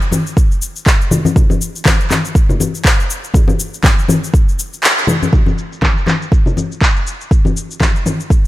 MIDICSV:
0, 0, Header, 1, 2, 480
1, 0, Start_track
1, 0, Tempo, 495868
1, 1318, Time_signature, 4, 2, 24, 8
1, 8203, End_track
2, 0, Start_track
2, 0, Title_t, "Drums"
2, 16, Note_on_c, 9, 69, 23
2, 112, Note_on_c, 9, 63, 84
2, 113, Note_off_c, 9, 69, 0
2, 118, Note_on_c, 9, 47, 79
2, 123, Note_on_c, 9, 69, 89
2, 209, Note_off_c, 9, 63, 0
2, 215, Note_off_c, 9, 47, 0
2, 220, Note_off_c, 9, 69, 0
2, 259, Note_on_c, 9, 69, 37
2, 355, Note_off_c, 9, 69, 0
2, 356, Note_on_c, 9, 36, 113
2, 364, Note_on_c, 9, 69, 47
2, 453, Note_off_c, 9, 36, 0
2, 461, Note_off_c, 9, 69, 0
2, 499, Note_on_c, 9, 69, 24
2, 596, Note_off_c, 9, 69, 0
2, 599, Note_on_c, 9, 69, 89
2, 696, Note_off_c, 9, 69, 0
2, 735, Note_on_c, 9, 69, 37
2, 832, Note_off_c, 9, 69, 0
2, 836, Note_on_c, 9, 36, 106
2, 839, Note_on_c, 9, 39, 95
2, 844, Note_on_c, 9, 69, 49
2, 933, Note_off_c, 9, 36, 0
2, 936, Note_off_c, 9, 39, 0
2, 940, Note_off_c, 9, 69, 0
2, 980, Note_on_c, 9, 69, 25
2, 1074, Note_on_c, 9, 64, 88
2, 1076, Note_off_c, 9, 69, 0
2, 1077, Note_on_c, 9, 47, 79
2, 1082, Note_on_c, 9, 69, 90
2, 1171, Note_off_c, 9, 64, 0
2, 1174, Note_off_c, 9, 47, 0
2, 1179, Note_off_c, 9, 69, 0
2, 1210, Note_on_c, 9, 63, 90
2, 1219, Note_on_c, 9, 69, 38
2, 1307, Note_off_c, 9, 63, 0
2, 1316, Note_off_c, 9, 69, 0
2, 1316, Note_on_c, 9, 36, 109
2, 1319, Note_on_c, 9, 64, 81
2, 1322, Note_on_c, 9, 69, 49
2, 1413, Note_off_c, 9, 36, 0
2, 1416, Note_off_c, 9, 64, 0
2, 1418, Note_off_c, 9, 69, 0
2, 1450, Note_on_c, 9, 63, 89
2, 1460, Note_on_c, 9, 69, 25
2, 1547, Note_off_c, 9, 63, 0
2, 1556, Note_off_c, 9, 69, 0
2, 1563, Note_on_c, 9, 69, 87
2, 1660, Note_off_c, 9, 69, 0
2, 1700, Note_on_c, 9, 69, 37
2, 1796, Note_on_c, 9, 36, 115
2, 1797, Note_off_c, 9, 69, 0
2, 1797, Note_on_c, 9, 39, 96
2, 1797, Note_on_c, 9, 47, 73
2, 1802, Note_on_c, 9, 63, 81
2, 1802, Note_on_c, 9, 69, 48
2, 1893, Note_off_c, 9, 36, 0
2, 1894, Note_off_c, 9, 39, 0
2, 1894, Note_off_c, 9, 47, 0
2, 1899, Note_off_c, 9, 63, 0
2, 1899, Note_off_c, 9, 69, 0
2, 1938, Note_on_c, 9, 69, 24
2, 2035, Note_off_c, 9, 69, 0
2, 2038, Note_on_c, 9, 39, 56
2, 2038, Note_on_c, 9, 47, 77
2, 2039, Note_on_c, 9, 63, 91
2, 2043, Note_on_c, 9, 69, 83
2, 2135, Note_off_c, 9, 39, 0
2, 2135, Note_off_c, 9, 47, 0
2, 2135, Note_off_c, 9, 63, 0
2, 2139, Note_off_c, 9, 69, 0
2, 2178, Note_on_c, 9, 69, 37
2, 2275, Note_off_c, 9, 69, 0
2, 2276, Note_on_c, 9, 36, 111
2, 2281, Note_on_c, 9, 69, 47
2, 2373, Note_off_c, 9, 36, 0
2, 2378, Note_off_c, 9, 69, 0
2, 2413, Note_on_c, 9, 64, 85
2, 2421, Note_on_c, 9, 69, 23
2, 2510, Note_off_c, 9, 64, 0
2, 2518, Note_off_c, 9, 69, 0
2, 2518, Note_on_c, 9, 63, 96
2, 2524, Note_on_c, 9, 69, 89
2, 2615, Note_off_c, 9, 63, 0
2, 2621, Note_off_c, 9, 69, 0
2, 2659, Note_on_c, 9, 69, 35
2, 2756, Note_off_c, 9, 69, 0
2, 2756, Note_on_c, 9, 36, 107
2, 2761, Note_on_c, 9, 39, 101
2, 2765, Note_on_c, 9, 69, 47
2, 2853, Note_off_c, 9, 36, 0
2, 2858, Note_off_c, 9, 39, 0
2, 2862, Note_off_c, 9, 69, 0
2, 2903, Note_on_c, 9, 69, 24
2, 3000, Note_off_c, 9, 69, 0
2, 3004, Note_on_c, 9, 69, 87
2, 3101, Note_off_c, 9, 69, 0
2, 3139, Note_on_c, 9, 69, 35
2, 3231, Note_on_c, 9, 64, 86
2, 3236, Note_off_c, 9, 69, 0
2, 3237, Note_on_c, 9, 36, 111
2, 3243, Note_on_c, 9, 69, 52
2, 3327, Note_off_c, 9, 64, 0
2, 3333, Note_off_c, 9, 36, 0
2, 3340, Note_off_c, 9, 69, 0
2, 3365, Note_on_c, 9, 63, 93
2, 3380, Note_on_c, 9, 69, 26
2, 3462, Note_off_c, 9, 63, 0
2, 3477, Note_off_c, 9, 69, 0
2, 3481, Note_on_c, 9, 69, 88
2, 3578, Note_off_c, 9, 69, 0
2, 3620, Note_on_c, 9, 69, 37
2, 3710, Note_on_c, 9, 63, 78
2, 3717, Note_off_c, 9, 69, 0
2, 3717, Note_on_c, 9, 36, 118
2, 3720, Note_on_c, 9, 39, 99
2, 3720, Note_on_c, 9, 47, 79
2, 3724, Note_on_c, 9, 69, 48
2, 3806, Note_off_c, 9, 63, 0
2, 3814, Note_off_c, 9, 36, 0
2, 3817, Note_off_c, 9, 39, 0
2, 3817, Note_off_c, 9, 47, 0
2, 3821, Note_off_c, 9, 69, 0
2, 3860, Note_on_c, 9, 69, 25
2, 3955, Note_on_c, 9, 63, 94
2, 3957, Note_off_c, 9, 69, 0
2, 3961, Note_on_c, 9, 47, 81
2, 3965, Note_on_c, 9, 69, 89
2, 4051, Note_off_c, 9, 63, 0
2, 4058, Note_off_c, 9, 47, 0
2, 4062, Note_off_c, 9, 69, 0
2, 4104, Note_on_c, 9, 69, 40
2, 4198, Note_on_c, 9, 36, 118
2, 4201, Note_off_c, 9, 69, 0
2, 4206, Note_on_c, 9, 69, 51
2, 4294, Note_off_c, 9, 36, 0
2, 4303, Note_off_c, 9, 69, 0
2, 4343, Note_on_c, 9, 69, 24
2, 4440, Note_off_c, 9, 69, 0
2, 4445, Note_on_c, 9, 69, 90
2, 4542, Note_off_c, 9, 69, 0
2, 4582, Note_on_c, 9, 69, 37
2, 4679, Note_off_c, 9, 69, 0
2, 4681, Note_on_c, 9, 39, 99
2, 4686, Note_on_c, 9, 69, 50
2, 4778, Note_off_c, 9, 39, 0
2, 4782, Note_off_c, 9, 69, 0
2, 4821, Note_on_c, 9, 69, 24
2, 4910, Note_on_c, 9, 64, 94
2, 4918, Note_off_c, 9, 69, 0
2, 4920, Note_on_c, 9, 47, 92
2, 4925, Note_on_c, 9, 69, 88
2, 5007, Note_off_c, 9, 64, 0
2, 5017, Note_off_c, 9, 47, 0
2, 5021, Note_off_c, 9, 69, 0
2, 5058, Note_on_c, 9, 63, 89
2, 5063, Note_on_c, 9, 69, 37
2, 5155, Note_off_c, 9, 63, 0
2, 5157, Note_on_c, 9, 36, 104
2, 5160, Note_off_c, 9, 69, 0
2, 5161, Note_on_c, 9, 64, 75
2, 5168, Note_on_c, 9, 69, 47
2, 5254, Note_off_c, 9, 36, 0
2, 5258, Note_off_c, 9, 64, 0
2, 5264, Note_off_c, 9, 69, 0
2, 5290, Note_on_c, 9, 63, 84
2, 5302, Note_on_c, 9, 69, 23
2, 5386, Note_off_c, 9, 63, 0
2, 5399, Note_off_c, 9, 69, 0
2, 5404, Note_on_c, 9, 69, 78
2, 5501, Note_off_c, 9, 69, 0
2, 5542, Note_on_c, 9, 69, 35
2, 5632, Note_on_c, 9, 63, 80
2, 5636, Note_on_c, 9, 36, 106
2, 5639, Note_off_c, 9, 69, 0
2, 5642, Note_on_c, 9, 39, 92
2, 5642, Note_on_c, 9, 47, 70
2, 5647, Note_on_c, 9, 69, 43
2, 5728, Note_off_c, 9, 63, 0
2, 5733, Note_off_c, 9, 36, 0
2, 5739, Note_off_c, 9, 39, 0
2, 5739, Note_off_c, 9, 47, 0
2, 5743, Note_off_c, 9, 69, 0
2, 5784, Note_on_c, 9, 69, 22
2, 5871, Note_on_c, 9, 63, 78
2, 5880, Note_off_c, 9, 69, 0
2, 5883, Note_on_c, 9, 39, 55
2, 5883, Note_on_c, 9, 47, 72
2, 5887, Note_on_c, 9, 69, 80
2, 5967, Note_off_c, 9, 63, 0
2, 5980, Note_off_c, 9, 39, 0
2, 5980, Note_off_c, 9, 47, 0
2, 5984, Note_off_c, 9, 69, 0
2, 6022, Note_on_c, 9, 69, 36
2, 6116, Note_on_c, 9, 36, 104
2, 6119, Note_off_c, 9, 69, 0
2, 6127, Note_on_c, 9, 69, 46
2, 6213, Note_off_c, 9, 36, 0
2, 6224, Note_off_c, 9, 69, 0
2, 6252, Note_on_c, 9, 64, 83
2, 6263, Note_on_c, 9, 69, 22
2, 6348, Note_off_c, 9, 64, 0
2, 6359, Note_on_c, 9, 63, 84
2, 6360, Note_off_c, 9, 69, 0
2, 6368, Note_on_c, 9, 69, 84
2, 6456, Note_off_c, 9, 63, 0
2, 6464, Note_off_c, 9, 69, 0
2, 6504, Note_on_c, 9, 69, 33
2, 6596, Note_on_c, 9, 36, 102
2, 6601, Note_off_c, 9, 69, 0
2, 6604, Note_on_c, 9, 39, 93
2, 6608, Note_on_c, 9, 69, 46
2, 6693, Note_off_c, 9, 36, 0
2, 6701, Note_off_c, 9, 39, 0
2, 6705, Note_off_c, 9, 69, 0
2, 6741, Note_on_c, 9, 69, 23
2, 6838, Note_off_c, 9, 69, 0
2, 6843, Note_on_c, 9, 69, 84
2, 6940, Note_off_c, 9, 69, 0
2, 6981, Note_on_c, 9, 69, 34
2, 7077, Note_off_c, 9, 69, 0
2, 7077, Note_on_c, 9, 36, 110
2, 7084, Note_on_c, 9, 69, 47
2, 7174, Note_off_c, 9, 36, 0
2, 7181, Note_off_c, 9, 69, 0
2, 7211, Note_on_c, 9, 63, 92
2, 7222, Note_on_c, 9, 69, 23
2, 7308, Note_off_c, 9, 63, 0
2, 7319, Note_off_c, 9, 69, 0
2, 7326, Note_on_c, 9, 69, 87
2, 7422, Note_off_c, 9, 69, 0
2, 7463, Note_on_c, 9, 69, 37
2, 7553, Note_on_c, 9, 63, 87
2, 7557, Note_on_c, 9, 36, 111
2, 7560, Note_off_c, 9, 69, 0
2, 7563, Note_on_c, 9, 39, 94
2, 7563, Note_on_c, 9, 47, 66
2, 7567, Note_on_c, 9, 69, 46
2, 7650, Note_off_c, 9, 63, 0
2, 7653, Note_off_c, 9, 36, 0
2, 7660, Note_off_c, 9, 39, 0
2, 7660, Note_off_c, 9, 47, 0
2, 7664, Note_off_c, 9, 69, 0
2, 7703, Note_on_c, 9, 69, 25
2, 7800, Note_off_c, 9, 69, 0
2, 7801, Note_on_c, 9, 47, 74
2, 7803, Note_on_c, 9, 63, 84
2, 7805, Note_on_c, 9, 69, 83
2, 7898, Note_off_c, 9, 47, 0
2, 7900, Note_off_c, 9, 63, 0
2, 7902, Note_off_c, 9, 69, 0
2, 7941, Note_on_c, 9, 69, 36
2, 8038, Note_off_c, 9, 69, 0
2, 8038, Note_on_c, 9, 36, 105
2, 8046, Note_on_c, 9, 69, 45
2, 8134, Note_off_c, 9, 36, 0
2, 8143, Note_off_c, 9, 69, 0
2, 8203, End_track
0, 0, End_of_file